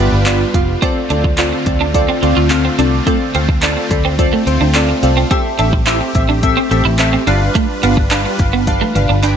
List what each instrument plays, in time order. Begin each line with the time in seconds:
Already playing: supersaw synth G3 D4 F4 B4, synth keys B3
0.00 synth keys F4 G4 D5
0.12 fingered electric bass G1
0.26 synth keys B3 F4 G4 D5, clap, closed hi-hat
0.54 fingered electric bass F1, synth keys B3 F4 G4 F5, kick, closed hi-hat
0.82 supersaw synth D3 A3 C4, synth keys C4 F4 A4 D5, clean electric guitar C4, kick, closed hi-hat
1.10 fingered electric bass D2, synth keys C4 F4 A4 D5, clean electric guitar D4, closed hi-hat
1.24 muted clean electric guitar stroke, kick
1.38 synth keys C4 F4 A4 D5, clean electric guitar F4, clap, closed hi-hat
1.53 muted clean electric guitar stroke
1.66 fingered electric bass D2, synth keys C4 F4 A4 D5, kick, closed hi-hat
1.81 clean electric guitar D4
1.94 synth keys C4 F4 A4 D5, kick, closed hi-hat
2.09 clean electric guitar C4
2.22 fingered electric bass D2, synth keys C4 F4 A4 D5, muted clean electric guitar stroke, closed hi-hat
2.37 fingered electric bass D2, clean electric guitar F4
2.50 synth keys C4 F4 A4 F5, muted clean electric guitar stroke, clap, closed hi-hat
2.65 clean electric guitar C4
2.78 fingered electric bass C2, synth keys C4 F4 A4 D5, clean electric guitar D4, closed hi-hat
3.06 clean electric guitar A3, synth keys C4 F4 A4 D5, kick, closed hi-hat
3.34 fingered electric bass D2, synth keys C4 F4 A4 F5, clean electric guitar C4, closed hi-hat
3.49 muted clean electric guitar stroke, kick
3.62 synth keys C4 F4 A4 D5, clean electric guitar D4, clap, closed hi-hat
3.77 muted clean electric guitar stroke
3.90 fingered electric bass D2, synth keys C4 F4 A4 D5 B5, kick, closed hi-hat
4.05 clean electric guitar C4
4.18 synth keys C4 F4 A4 D5 A5, kick, closed hi-hat
4.33 clean electric guitar A3
4.47 fingered electric bass D2, synth keys C4 F4 A4 C5 G5, muted clean electric guitar stroke, closed hi-hat
4.61 fingered electric bass D2, clean electric guitar D4
4.75 synth keys C4 F4 A4 D5 F5, clean electric guitar D4, clap, closed hi-hat
4.89 muted clean electric guitar stroke
5.03 fingered electric bass C2, synth keys C4 F4 A4 D5 F5, closed hi-hat
5.17 clean electric guitar C4
5.31 synth keys C4 G4 A4 E5, clean electric guitar C4, supersaw synth G4, kick, closed hi-hat
5.59 fingered electric bass A1, synth keys C4 G4 A4 E5, clean electric guitar D4, closed hi-hat
5.73 muted clean electric guitar stroke, kick
5.87 synth keys C4 G4 A4 E5, clean electric guitar E4, clap, closed hi-hat
6.01 muted clean electric guitar stroke
6.15 fingered electric bass A1, synth keys C4 G4 A4 E5, kick, closed hi-hat
6.29 clean electric guitar D4
6.43 synth keys C4 G4 A4 E5, kick, closed hi-hat
6.57 clean electric guitar C4
6.71 fingered electric bass A1, synth keys C4 G4 A4 E5, muted clean electric guitar stroke, closed hi-hat
6.85 fingered electric bass A1, clean electric guitar E4
6.99 synth keys C4 G4 A4 E5, muted clean electric guitar stroke, clap, closed hi-hat
7.13 clean electric guitar C4
7.27 fingered electric bass G1, supersaw synth G3 D4 F4 B4, synth keys D4 G4 B4 F5, clean electric guitar D4, closed hi-hat
7.55 clean electric guitar A3, kick, closed hi-hat
7.83 fingered electric bass G1, clean electric guitar B3, synth keys D4 G4 B4 F5, closed hi-hat
7.97 muted clean electric guitar stroke, kick
8.11 synth keys D4 G4 B4 F5, clean electric guitar D4, clap, closed hi-hat
8.25 muted clean electric guitar stroke
8.39 fingered electric bass G1, synth keys D4 G4 B4 F5, kick, closed hi-hat
8.53 clean electric guitar B3
8.67 synth keys D4 G4 B4 F5, kick, closed hi-hat, high tom
8.81 clean electric guitar A3, high tom
8.95 fingered electric bass G1, synth keys D4 G4 B4 F5, muted clean electric guitar stroke, closed hi-hat, mid tom
9.09 fingered electric bass G1, clean electric guitar D4
9.23 clean electric guitar D4, synth keys D4 G4 B4 G5 B5, clap, closed hi-hat